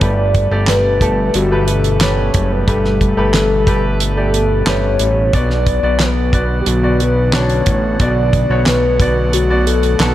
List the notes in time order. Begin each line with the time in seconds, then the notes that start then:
0.01 G1 G2 B2 G3 A3 G4 B4 D5, kick, closed hi-hat
0.34 kick, closed hi-hat
0.51 G1 A3 G4 D5
0.67 G1 B4, snare, clap, closed hi-hat
1.01 A3 G4 A4, kick, closed hi-hat
1.34 G1 F#4, closed hi-hat
1.51 A3 G4 B4
1.68 A4, closed hi-hat
1.84 closed hi-hat
2.01 A3 G4 B4 C#5, snare, clap, closed hi-hat
2.34 F#1, kick, closed hi-hat
2.52 B4
2.67 G1 G2 A3 B3 G4 A4 B4, kick, closed hi-hat
2.85 snare
3.01 kick, closed hi-hat
3.17 G1 A3 G4 B4
3.34 G1, snare, clap, closed hi-hat
3.67 A3 G4 B4, kick, closed hi-hat
4.00 closed hi-hat
4.17 A3 G4 D5
4.34 A4, closed hi-hat
4.66 G1 A3 G4 B4 C#5, snare, clap, closed hi-hat
4.99 A1, closed hi-hat
5.33 B1 B2 D3 B3 F#4 D5, kick, closed hi-hat
5.50 snare
5.67 kick, closed hi-hat
5.83 B1 B3 F#4 D5
5.99 B1 B4, snare, clap, closed hi-hat
6.33 B3 F#4 D5, kick, closed hi-hat
6.60 G4
6.66 B1 F#4, closed hi-hat
6.83 B3 F#4 D5
7.00 B4, closed hi-hat
7.33 B3 D4 F#4 C#5, snare, clap, closed hi-hat
7.49 closed hi-hat
7.66 A1, kick, closed hi-hat
8.00 B1 B2 A3 B3 F#4 D5, kick, closed hi-hat
8.33 kick, closed hi-hat
8.50 B1 B3 F#4 C#5
8.66 B1 B4, snare, clap, closed hi-hat
9.00 B3 F#4 D5, kick, closed hi-hat
9.33 F#4, closed hi-hat
9.50 B3 F#4 D5
9.67 A4, closed hi-hat
9.83 closed hi-hat
10.00 B1 B3 F#4 A4 B4, snare, clap, closed hi-hat